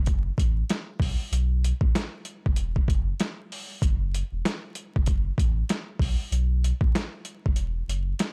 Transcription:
0.00 0.30 F#1 loud
0.06 kick medium
0.06 closed hi-hat medium
0.38 0.63 A1 loud
0.38 kick medium
0.38 closed hi-hat medium
0.70 snare loud
0.70 closed hi-hat medium
1.00 1.15 B1 loud
1.00 kick loud
1.00 open hi-hat medium
1.32 1.72 B1 loud
1.32 closed hi-hat loud
1.64 closed hi-hat medium
1.81 1.91 A1 medium
1.81 kick loud
1.95 snare loud
1.95 closed hi-hat medium
2.25 closed hi-hat medium
2.46 2.55 F#1 loud
2.46 kick medium
2.56 2.82 E1 loud
2.56 closed hi-hat medium
2.76 kick loud
2.88 3.13 F#1 medium
2.88 kick medium
2.88 closed hi-hat medium
3.20 snare loud
3.20 snare medium
3.20 closed hi-hat medium
3.52 open hi-hat medium
3.82 4.23 F#1 loud
3.82 kick loud
3.82 closed hi-hat loud
4.14 closed hi-hat medium
4.32 4.42 E1 medium
4.45 snare loud
4.45 closed hi-hat loud
4.75 closed hi-hat medium
4.96 5.31 F#1 medium
4.96 kick medium
5.06 kick medium
5.06 closed hi-hat medium
5.38 5.63 A1 loud
5.38 kick loud
5.38 closed hi-hat medium
5.69 snare loud
5.69 closed hi-hat medium
5.99 6.15 B1 loud
5.99 kick loud
5.99 open hi-hat medium
6.32 6.72 B1 loud
6.32 closed hi-hat loud
6.64 closed hi-hat medium
6.81 6.91 A1 medium
6.81 kick loud
6.95 snare loud
6.95 closed hi-hat loud
7.25 closed hi-hat medium
7.46 7.55 F#1 loud
7.46 kick medium
7.56 7.82 E1 loud
7.56 closed hi-hat medium
7.88 8.13 F#1 medium
7.88 closed hi-hat medium
8.19 snare loud
8.19 snare medium
8.19 closed hi-hat medium

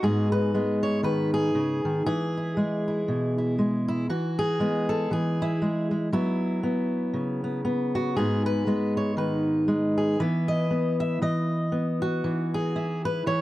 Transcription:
0.03 2.06 G#2 medium
0.03 0.54 G#3 soft
0.03 0.54 B3 soft
0.03 2.05 F#4 medium
0.03 0.32 G#4 loud
0.32 0.82 B4 loud
0.54 2.56 G#3 medium
0.54 4.10 B3 soft
0.83 1.04 C#5 loud
1.03 1.55 D#3 medium
1.03 1.33 B4 loud
1.34 2.05 G#4 loud
1.55 1.84 C#3 medium
1.85 2.06 D#3 medium
2.06 4.07 E3 medium
2.06 4.09 G#4 loud
2.37 2.87 E4 soft
2.57 3.57 G#3 medium
2.88 3.37 E4 soft
3.08 4.07 B2 medium
3.38 3.87 E4 soft
3.58 4.07 G#3 medium
3.88 4.10 E4 medium
4.09 5.10 E3 medium
4.09 4.89 F#4 loud
4.39 5.11 G#4 loud
4.60 5.61 G#3 medium
4.60 5.41 B3 soft
4.89 5.11 A4 medium
5.11 6.10 E3 medium
5.11 5.92 G#4 medium
5.42 6.12 E4 medium
5.62 5.90 G#3 medium
5.91 6.10 G#3 soft
6.12 8.16 F#3 medium
6.12 6.63 B3 medium
6.12 7.94 E4 medium
6.63 7.43 B3 medium
7.14 8.16 C#3 medium
7.44 7.64 B3 soft
7.65 8.18 B3 medium
7.95 8.16 F#4 medium
8.16 10.19 G#2 medium
8.16 8.66 G#3 medium
8.16 8.67 B3 medium
8.16 10.18 F#4 medium
8.16 8.45 G#4 medium
8.46 8.96 B4 medium
8.67 9.67 G#3 medium
8.67 10.20 B3 soft
8.97 9.18 C#5 medium
9.17 10.16 D#3 medium
9.17 9.97 B4 medium
9.68 10.20 G#3 medium
9.98 10.19 G#4 medium
10.20 11.21 E3 medium
10.20 10.70 B3 soft
10.20 12.01 E4 soft
10.20 11.00 B4 medium
10.48 10.99 D#5 loud
10.71 11.72 B3 medium
11.00 11.22 E5 loud
11.22 12.21 E3 medium
11.22 12.02 D#5 medium
11.72 13.30 B3 medium
12.02 12.75 F#4 medium
12.24 13.25 E3 medium
12.54 13.05 G#4 loud
12.76 13.41 E4 medium
13.05 13.26 B4 loud
13.26 13.41 E3 medium
13.26 13.41 C#5 loud

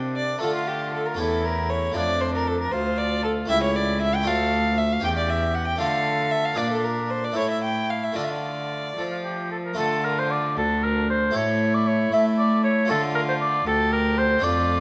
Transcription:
0.00 0.38 C3 medium
0.00 0.41 C3 medium
0.00 0.36 A#3 soft
0.00 0.36 D4 soft
0.00 0.42 D4 medium
0.00 0.37 G4 soft
0.16 0.40 D5 medium
0.38 1.18 D3 medium
0.38 1.13 A3 medium
0.38 1.16 D4 medium
0.38 1.17 F4 medium
0.38 0.54 A4 loud
0.43 1.16 D3 medium
0.43 1.18 F4 medium
0.55 0.69 F4 medium
0.68 0.93 G4 medium
0.94 1.09 A4 medium
1.07 1.19 A#4 medium
1.14 1.91 A3 medium
1.14 1.93 C#4 medium
1.14 1.93 G4 medium
1.19 1.95 E2 medium
1.19 1.92 E2 medium
1.19 1.98 E4 medium
1.19 1.46 A4 medium
1.45 1.72 A#4 medium
1.70 1.96 C#5 loud
1.92 3.44 A3 medium
1.92 3.45 F4 medium
1.96 2.72 F2 medium
1.96 2.69 F2 medium
1.96 2.72 D4 medium
1.96 2.23 D5 loud
2.21 2.34 C5 loud
2.35 2.49 A#4 loud
2.47 2.60 A4 loud
2.60 2.73 A#4 medium
2.72 3.46 D2 medium
2.72 3.49 D2 medium
2.72 3.48 F4 medium
2.72 3.00 C5 loud
2.98 3.23 D5 loud
3.24 3.32 A4 loud
3.45 4.20 A3 medium
3.45 4.23 E4 medium
3.45 4.24 G4 medium
3.45 3.62 E5 loud
3.50 4.23 C#2 medium
3.50 4.28 C#2 medium
3.50 4.25 E4 medium
3.64 3.77 C#5 loud
3.76 4.01 D5 loud
4.02 4.16 E5 loud
4.15 4.29 G5 loud
4.22 4.99 A3 medium
4.22 4.99 D4 medium
4.22 5.00 F4 medium
4.22 4.75 A4 loud
4.26 4.99 D2 medium
4.26 5.03 D2 medium
4.26 4.79 F5 loud
4.78 4.94 E5 loud
4.92 5.04 F5 loud
5.00 5.77 E2 medium
5.00 5.79 E2 medium
5.00 5.77 C#4 medium
5.00 5.77 G4 medium
5.00 5.76 G4 medium
5.05 5.10 G5 loud
5.18 5.31 D5 loud
5.30 5.56 E5 loud
5.55 5.67 F#5 loud
5.67 5.80 G5 loud
5.76 6.53 A3 medium
5.76 6.53 D4 medium
5.76 6.55 F4 medium
5.76 6.58 A4 loud
5.80 6.54 D3 medium
5.80 6.56 D3 medium
5.80 6.33 F5 loud
6.31 6.47 E5 loud
6.45 6.59 F5 loud
6.53 7.32 A#3 medium
6.53 7.33 D4 medium
6.53 7.38 D4 medium
6.53 7.34 F4 medium
6.57 7.32 A#2 medium
6.57 7.35 A#2 medium
6.57 6.71 D5 loud
6.71 6.86 A4 medium
6.84 7.12 A#4 medium
7.10 7.26 C5 medium
7.24 7.37 D5 medium
7.32 8.11 A3 medium
7.32 8.13 E4 medium
7.32 8.14 A4 medium
7.36 8.13 A2 medium
7.36 8.16 A2 medium
7.36 8.15 E4 medium
7.36 7.50 C#5 loud
7.51 7.63 E5 medium
7.64 7.91 G5 loud
7.90 8.05 F5 medium
8.04 8.18 E5 medium
8.12 9.72 A3 soft
8.12 9.72 F4 soft
8.12 8.90 F4 medium
8.12 9.73 A4 soft
8.12 8.26 D5 medium
8.17 8.94 D3 medium
8.17 8.96 D3 medium
8.24 8.32 E5 medium
8.31 9.51 D5 medium
8.97 9.76 F3 medium
8.97 9.74 F3 medium
8.97 9.03 A4 medium
9.11 9.17 F4 medium
9.24 9.51 G4 medium
9.51 9.57 A4 medium
9.65 9.78 A#4 medium
9.74 11.29 A3 medium
9.74 11.29 F4 medium
9.74 10.58 F4 medium
9.74 11.30 A4 medium
9.78 10.53 D3 medium
9.78 10.59 D3 medium
9.78 10.06 A4 loud
10.05 10.20 A#4 loud
10.19 10.33 C5 medium
10.31 10.57 D5 loud
10.56 11.31 D2 medium
10.56 11.35 D2 medium
10.56 11.34 D4 medium
10.56 10.86 A4 loud
10.84 11.09 A#4 loud
11.10 11.37 C5 loud
11.31 12.11 A3 medium
11.31 12.86 E4 loud
11.31 12.84 G4 medium
11.31 12.85 A4 medium
11.35 12.08 A2 medium
11.35 12.11 A2 medium
11.35 11.76 C#5 loud
11.74 11.89 D5 loud
11.87 12.13 C#5 loud
12.12 12.84 A3 medium
12.12 12.92 A3 medium
12.12 12.24 E5 loud
12.38 12.63 D5 loud
12.64 12.89 C#5 loud
12.85 14.37 A3 medium
12.85 14.38 F4 medium
12.85 13.69 F4 loud
12.85 14.39 A4 medium
12.89 13.63 D3 medium
12.89 13.66 D3 medium
12.89 13.02 A4 loud
13.15 13.21 A#4 loud
13.29 13.34 C5 loud
13.41 13.66 D5 loud
13.67 14.39 D2 medium
13.67 14.42 D2 medium
13.67 14.44 G4 medium
13.67 13.92 A4 loud
13.93 14.19 A#4 loud
14.18 14.45 C5 loud
14.39 14.80 A3 medium
14.39 14.80 D4 medium
14.39 14.80 A4 medium
14.43 14.80 F2 medium
14.43 14.80 F4 loud
14.43 14.80 D5 loud

